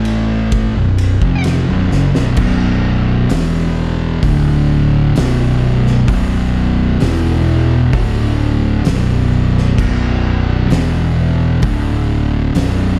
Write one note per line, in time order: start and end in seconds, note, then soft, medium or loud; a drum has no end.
0.00 0.72 A1 medium
0.00 0.74 A2 medium
0.00 0.75 E3 loud
0.00 0.75 A3 loud
0.00 1.42 A5 loud
0.05 ride medium
0.52 kick loud
0.52 ride loud
0.76 1.19 B0 medium
0.76 1.13 B1 medium
0.76 1.13 F#2 medium
0.98 ride medium
1.22 1.65 F1 loud
1.22 1.67 F2 medium
1.22 1.67 C3 medium
1.22 1.67 F3 loud
1.22 kick loud
1.44 snare loud
1.44 ride medium
1.68 1.90 B0 medium
1.68 1.90 B1 loud
1.68 1.90 F#2 medium
1.91 2.14 F#1 loud
1.91 2.13 F#2 loud
1.91 2.14 C#3 loud
1.91 snare medium
2.14 2.37 B0 loud
2.14 2.36 B1 medium
2.14 2.37 F#2 loud
2.14 snare medium
2.37 3.26 B0 medium
2.37 3.29 B1 medium
2.37 3.29 F#2 loud
2.37 3.30 B2 loud
2.37 kick loud
2.37 crash loud
3.30 4.19 E1 medium
3.30 4.22 E2 medium
3.30 4.22 B2 medium
3.30 4.22 E3 loud
3.30 snare loud
3.30 open hi-hat medium
4.23 5.12 D1 loud
4.23 5.15 D2 medium
4.23 5.15 A2 loud
4.23 5.15 D3 loud
4.23 kick loud
4.23 open hi-hat medium
5.16 6.05 B0 loud
5.16 6.07 B1 medium
5.16 6.07 F#2 loud
5.16 6.08 B2 loud
5.16 snare loud
5.16 open hi-hat medium
5.86 snare soft
6.08 6.97 B0 loud
6.08 6.99 B1 medium
6.08 7.00 F#2 loud
6.08 7.00 B2 loud
6.08 kick loud
6.08 open hi-hat medium
7.00 7.90 E1 loud
7.00 7.92 E2 loud
7.00 7.92 B2 loud
7.00 7.92 E3 loud
7.00 snare loud
7.00 open hi-hat medium
7.93 8.82 D1 loud
7.93 8.84 D2 loud
7.93 8.85 A2 medium
7.93 8.85 D3 loud
7.93 kick loud
7.93 open hi-hat medium
8.85 9.75 B0 loud
8.85 9.76 B1 loud
8.85 9.77 F#2 loud
8.85 9.78 B2 loud
8.85 snare loud
8.85 open hi-hat medium
9.58 snare soft
9.77 10.67 B0 medium
9.77 10.69 B1 medium
9.77 10.69 F#2 medium
9.77 10.70 B2 loud
9.77 kick medium
9.77 crash medium
10.70 11.59 E1 medium
10.70 11.61 E2 loud
10.70 11.63 B2 loud
10.70 11.63 E3 loud
10.70 snare loud
10.70 open hi-hat medium
11.62 12.52 D1 loud
11.62 12.54 D2 loud
11.62 12.54 A2 medium
11.62 12.54 D3 loud
11.62 kick loud
11.62 open hi-hat medium
12.55 12.99 B0 loud
12.55 12.99 B1 loud
12.55 12.99 F#2 loud
12.55 12.99 B2 loud
12.55 snare loud
12.55 open hi-hat medium